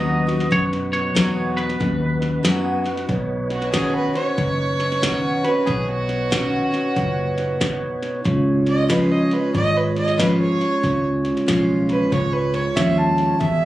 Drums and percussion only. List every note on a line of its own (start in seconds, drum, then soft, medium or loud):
0.29 snare soft
0.40 snare soft
0.52 kick loud
0.52 snare soft
0.73 snare soft
0.93 snare soft
1.16 snare loud
1.16 hi-hat pedal medium
1.58 snare soft
1.70 snare soft
1.81 kick loud
1.81 snare soft
2.22 snare soft
2.45 snare loud
2.45 hi-hat pedal medium
2.86 snare soft
2.97 snare soft
3.09 kick loud
3.09 snare soft
3.50 snare soft
3.62 snare soft
3.74 kick medium
3.74 snare loud
3.74 hi-hat pedal medium
4.15 snare soft
4.38 kick loud
4.38 snare soft
4.80 snare soft
4.92 snare soft
5.03 kick medium
5.03 snare loud
5.03 hi-hat pedal medium
5.45 snare soft
5.67 kick loud
5.67 snare soft
6.09 snare soft
6.32 kick medium
6.32 snare loud
6.32 hi-hat pedal medium
6.74 snare soft
6.96 kick loud
6.96 snare soft
7.38 snare soft
7.61 kick medium
7.61 snare loud
7.61 hi-hat pedal medium
8.03 snare soft
8.25 kick loud
8.25 snare soft
8.67 snare soft
8.90 kick medium
8.90 snare loud
8.90 hi-hat pedal medium
9.31 snare soft
9.55 kick loud
9.55 snare soft
9.96 snare soft
10.08 snare soft
10.19 kick medium
10.19 snare loud
10.19 hi-hat pedal medium
10.61 snare soft
10.84 kick loud
10.84 snare soft
11.25 snare soft
11.37 snare soft
11.48 kick medium
11.48 snare loud
11.48 hi-hat pedal medium
11.89 snare soft
12.12 kick loud
12.12 snare soft
12.54 snare soft
12.77 kick medium
12.77 snare loud
12.77 hi-hat pedal medium
13.18 snare soft
13.41 kick loud
13.41 snare soft